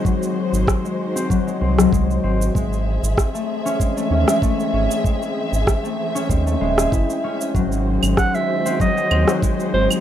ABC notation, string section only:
X:1
M:4/4
L:1/8
Q:"Swing 16ths" 1/4=96
K:none
V:1 name="String section"
[^D,^G,^F^B]8 | [E,^Ge]8- | [E,^Ge]8 | [^D,^G,^F^B]8 |]